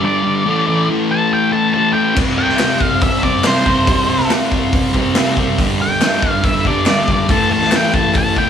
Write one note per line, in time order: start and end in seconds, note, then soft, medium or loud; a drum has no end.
0.01 0.44 G2 medium
0.01 0.24 D3 medium
0.01 0.22 G3 medium
0.01 0.87 D5 medium
0.23 0.45 D3 medium
0.23 0.44 G3 medium
0.45 0.87 A2 medium
0.45 0.69 E3 loud
0.45 0.66 A3 loud
0.67 0.90 E3 medium
0.67 0.90 A3 medium
0.89 1.72 A2 loud
0.89 1.54 E3 loud
0.89 1.51 A3 loud
1.11 1.32 A5 loud
1.33 1.52 G5 medium
1.52 1.75 E3 medium
1.52 1.76 A3 medium
1.52 1.72 A5 loud
1.74 2.15 A2 medium
1.74 1.97 E3 medium
1.74 1.93 A3 medium
1.74 1.93 A5 medium
1.93 2.16 E3 medium
1.93 2.15 A3 medium
1.93 2.15 G5 medium
2.15 2.58 C3 medium
2.15 2.40 G3 loud
2.15 2.37 C4 loud
2.15 kick loud
2.15 crash loud
2.37 2.59 G3 medium
2.37 2.61 C4 medium
2.37 2.83 G5 loud
2.49 snare soft
2.58 3.44 C3 loud
2.58 3.26 G3 loud
2.58 3.23 C4 loud
2.58 snare loud
2.58 clap loud
2.58 open hi-hat medium
2.81 3.01 F5 loud
2.81 kick medium
3.01 3.23 E5 medium
3.01 kick loud
3.01 open hi-hat medium
3.23 3.46 G3 medium
3.23 3.47 C4 medium
3.23 3.45 D5 loud
3.23 kick medium
3.44 3.85 C3 medium
3.44 3.68 G3 medium
3.44 4.29 C5 loud
3.44 snare loud
3.44 clap loud
3.44 open hi-hat medium
3.48 3.64 C4 medium
3.65 3.87 G3 medium
3.65 3.88 C4 medium
3.65 kick medium
3.86 4.28 C3 medium
3.86 4.10 G3 loud
3.86 4.06 C4 loud
3.86 kick loud
3.86 open hi-hat medium
4.08 4.30 G3 soft
4.08 4.31 C4 medium
4.20 snare soft
4.29 5.14 C3 loud
4.29 4.95 G3 loud
4.29 4.91 C4 loud
4.29 snare loud
4.29 clap loud
4.29 open hi-hat medium
4.52 kick medium
4.73 kick loud
4.73 open hi-hat medium
4.93 5.16 G3 medium
4.93 5.17 C4 medium
4.93 kick medium
5.15 5.58 C3 medium
5.15 5.38 G3 medium
5.15 5.35 C4 medium
5.15 snare loud
5.15 clap loud
5.15 open hi-hat medium
5.37 5.59 G3 medium
5.37 5.58 C4 medium
5.37 kick medium
5.58 6.00 G2 loud
5.58 5.81 D3 medium
5.58 5.79 G3 loud
5.58 kick loud
5.58 open hi-hat medium
5.80 6.01 D3 medium
5.80 6.03 G3 medium
5.80 6.30 G5 loud
6.01 6.86 G2 loud
6.01 6.67 D3 loud
6.01 6.64 G3 loud
6.01 snare loud
6.01 clap loud
6.01 open hi-hat medium
6.22 kick loud
6.30 6.44 F5 loud
6.44 6.66 E5 medium
6.44 kick loud
6.44 open hi-hat medium
6.65 6.88 D3 medium
6.65 6.89 G3 medium
6.65 6.85 D5 loud
6.65 kick medium
6.86 7.29 G2 medium
6.86 7.11 D3 medium
6.86 7.29 D5 medium
6.86 snare loud
6.86 clap loud
6.86 open hi-hat medium
6.90 7.07 G3 medium
7.08 7.29 D3 medium
7.08 7.29 G3 medium
7.08 kick medium
7.29 7.71 A2 loud
7.29 7.53 E3 loud
7.29 7.50 A3 loud
7.29 7.51 A5 loud
7.29 kick loud
7.29 open hi-hat medium
7.51 7.72 E3 medium
7.51 7.74 A3 medium
7.51 7.73 A5 loud
7.61 snare soft
7.72 8.50 A2 loud
7.72 8.39 E3 loud
7.72 8.36 A3 loud
7.72 snare loud
7.72 clap loud
7.72 open hi-hat medium
7.76 7.94 G5 loud
7.94 8.15 A5 medium
7.94 kick loud
8.14 8.38 A5 loud
8.14 kick loud
8.14 clap medium
8.14 open hi-hat medium
8.36 8.50 E3 medium
8.36 8.50 A3 medium
8.36 8.50 G5 loud
8.36 kick medium